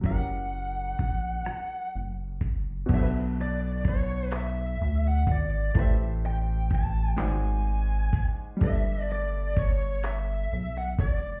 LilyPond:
<<
  \new Staff \with { instrumentName = "Lead electric guitar" } { \time 6/8 \key b \minor \tempo 4. = 42 fis''2 r4 | e''8 d''8 cis''8 e''8. fis''16 d''8 | e''8 g''8 a''8 gis''4 r8 | e''8 d''8 cis''8 e''8. fis''16 d''8 | }
  \new Staff \with { instrumentName = "Grand piano" } { \time 6/8 \key b \minor <fis cis' e' g' ais'>2. | <b, b d' a' b' c''>2. | <a e' g' b' c''>4. <gis dis' fis' bis' d''>4. | <g d' a' b' e''>2. | }
  \new Staff \with { instrumentName = "Analog synth bass" } { \clef bass \time 6/8 \key b \minor fis,,4 ais,,8 fis,,8 fis,,4 | b,,2 d,8 gis,,8 | a,,4. gis,,4 r8 | g,,2 b,,8 eis,,8 | }
  \new DrumStaff \with { instrumentName = "Drums" } \drummode { \time 6/8 <hh bd>4 <hh bd>8 <hh ss>4 <hh bd>8 | <cymc hh bd>4 <hh bd>8 <hc hh>4 <hh bd>8 | <hh bd>4 <hh bd>8 <hc hh>4 <hh bd>8 | <hh bd>4 <hh bd>8 <hc hh>4 <hh bd>8 | }
>>